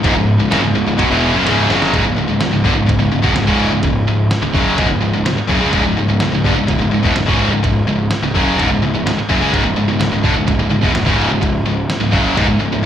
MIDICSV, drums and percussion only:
0, 0, Header, 1, 2, 480
1, 0, Start_track
1, 0, Key_signature, 4, "minor"
1, 0, Tempo, 474308
1, 38, Time_signature, 4, 2, 24, 8
1, 13013, End_track
2, 0, Start_track
2, 0, Title_t, "Drums"
2, 41, Note_on_c, 9, 36, 101
2, 43, Note_on_c, 9, 53, 68
2, 143, Note_off_c, 9, 36, 0
2, 144, Note_off_c, 9, 53, 0
2, 526, Note_on_c, 9, 38, 110
2, 526, Note_on_c, 9, 53, 74
2, 627, Note_off_c, 9, 38, 0
2, 627, Note_off_c, 9, 53, 0
2, 1001, Note_on_c, 9, 36, 103
2, 1003, Note_on_c, 9, 53, 74
2, 1102, Note_off_c, 9, 36, 0
2, 1104, Note_off_c, 9, 53, 0
2, 1483, Note_on_c, 9, 38, 64
2, 1483, Note_on_c, 9, 53, 75
2, 1585, Note_off_c, 9, 38, 0
2, 1585, Note_off_c, 9, 53, 0
2, 1723, Note_on_c, 9, 38, 85
2, 1824, Note_off_c, 9, 38, 0
2, 1843, Note_on_c, 9, 38, 76
2, 1944, Note_off_c, 9, 38, 0
2, 1959, Note_on_c, 9, 36, 92
2, 1961, Note_on_c, 9, 53, 62
2, 2060, Note_off_c, 9, 36, 0
2, 2062, Note_off_c, 9, 53, 0
2, 2435, Note_on_c, 9, 38, 108
2, 2435, Note_on_c, 9, 53, 63
2, 2536, Note_off_c, 9, 38, 0
2, 2536, Note_off_c, 9, 53, 0
2, 2679, Note_on_c, 9, 36, 112
2, 2780, Note_off_c, 9, 36, 0
2, 2921, Note_on_c, 9, 36, 79
2, 2926, Note_on_c, 9, 53, 64
2, 3022, Note_off_c, 9, 36, 0
2, 3028, Note_off_c, 9, 53, 0
2, 3281, Note_on_c, 9, 36, 80
2, 3383, Note_off_c, 9, 36, 0
2, 3398, Note_on_c, 9, 38, 92
2, 3398, Note_on_c, 9, 53, 69
2, 3499, Note_off_c, 9, 38, 0
2, 3499, Note_off_c, 9, 53, 0
2, 3519, Note_on_c, 9, 36, 90
2, 3620, Note_off_c, 9, 36, 0
2, 3875, Note_on_c, 9, 53, 59
2, 3879, Note_on_c, 9, 36, 82
2, 3976, Note_off_c, 9, 53, 0
2, 3980, Note_off_c, 9, 36, 0
2, 4361, Note_on_c, 9, 38, 104
2, 4361, Note_on_c, 9, 53, 70
2, 4462, Note_off_c, 9, 38, 0
2, 4462, Note_off_c, 9, 53, 0
2, 4601, Note_on_c, 9, 36, 107
2, 4702, Note_off_c, 9, 36, 0
2, 4837, Note_on_c, 9, 53, 71
2, 4840, Note_on_c, 9, 36, 102
2, 4939, Note_off_c, 9, 53, 0
2, 4941, Note_off_c, 9, 36, 0
2, 5322, Note_on_c, 9, 38, 103
2, 5322, Note_on_c, 9, 53, 61
2, 5423, Note_off_c, 9, 38, 0
2, 5423, Note_off_c, 9, 53, 0
2, 5560, Note_on_c, 9, 36, 94
2, 5661, Note_off_c, 9, 36, 0
2, 5797, Note_on_c, 9, 53, 57
2, 5801, Note_on_c, 9, 36, 93
2, 5899, Note_off_c, 9, 53, 0
2, 5902, Note_off_c, 9, 36, 0
2, 6276, Note_on_c, 9, 38, 105
2, 6276, Note_on_c, 9, 53, 62
2, 6377, Note_off_c, 9, 38, 0
2, 6377, Note_off_c, 9, 53, 0
2, 6523, Note_on_c, 9, 36, 109
2, 6625, Note_off_c, 9, 36, 0
2, 6764, Note_on_c, 9, 53, 64
2, 6765, Note_on_c, 9, 36, 87
2, 6865, Note_off_c, 9, 53, 0
2, 6866, Note_off_c, 9, 36, 0
2, 7127, Note_on_c, 9, 36, 86
2, 7229, Note_off_c, 9, 36, 0
2, 7244, Note_on_c, 9, 38, 102
2, 7244, Note_on_c, 9, 53, 58
2, 7345, Note_off_c, 9, 38, 0
2, 7345, Note_off_c, 9, 53, 0
2, 7371, Note_on_c, 9, 36, 100
2, 7472, Note_off_c, 9, 36, 0
2, 7729, Note_on_c, 9, 36, 80
2, 7731, Note_on_c, 9, 53, 65
2, 7831, Note_off_c, 9, 36, 0
2, 7832, Note_off_c, 9, 53, 0
2, 8204, Note_on_c, 9, 38, 103
2, 8204, Note_on_c, 9, 53, 72
2, 8305, Note_off_c, 9, 38, 0
2, 8305, Note_off_c, 9, 53, 0
2, 8450, Note_on_c, 9, 36, 102
2, 8551, Note_off_c, 9, 36, 0
2, 8692, Note_on_c, 9, 36, 97
2, 8698, Note_on_c, 9, 53, 72
2, 8793, Note_off_c, 9, 36, 0
2, 8799, Note_off_c, 9, 53, 0
2, 9177, Note_on_c, 9, 38, 107
2, 9177, Note_on_c, 9, 53, 67
2, 9278, Note_off_c, 9, 38, 0
2, 9278, Note_off_c, 9, 53, 0
2, 9412, Note_on_c, 9, 36, 90
2, 9513, Note_off_c, 9, 36, 0
2, 9650, Note_on_c, 9, 36, 105
2, 9652, Note_on_c, 9, 53, 63
2, 9751, Note_off_c, 9, 36, 0
2, 9753, Note_off_c, 9, 53, 0
2, 10127, Note_on_c, 9, 38, 115
2, 10127, Note_on_c, 9, 53, 65
2, 10228, Note_off_c, 9, 38, 0
2, 10228, Note_off_c, 9, 53, 0
2, 10363, Note_on_c, 9, 36, 105
2, 10465, Note_off_c, 9, 36, 0
2, 10603, Note_on_c, 9, 36, 83
2, 10604, Note_on_c, 9, 53, 62
2, 10704, Note_off_c, 9, 36, 0
2, 10705, Note_off_c, 9, 53, 0
2, 10962, Note_on_c, 9, 36, 97
2, 11063, Note_off_c, 9, 36, 0
2, 11081, Note_on_c, 9, 38, 104
2, 11081, Note_on_c, 9, 53, 64
2, 11182, Note_off_c, 9, 38, 0
2, 11182, Note_off_c, 9, 53, 0
2, 11201, Note_on_c, 9, 36, 95
2, 11302, Note_off_c, 9, 36, 0
2, 11560, Note_on_c, 9, 36, 77
2, 11564, Note_on_c, 9, 53, 56
2, 11661, Note_off_c, 9, 36, 0
2, 11665, Note_off_c, 9, 53, 0
2, 12040, Note_on_c, 9, 38, 107
2, 12040, Note_on_c, 9, 53, 69
2, 12141, Note_off_c, 9, 38, 0
2, 12141, Note_off_c, 9, 53, 0
2, 12278, Note_on_c, 9, 36, 99
2, 12380, Note_off_c, 9, 36, 0
2, 12520, Note_on_c, 9, 36, 108
2, 12522, Note_on_c, 9, 53, 67
2, 12621, Note_off_c, 9, 36, 0
2, 12623, Note_off_c, 9, 53, 0
2, 13013, End_track
0, 0, End_of_file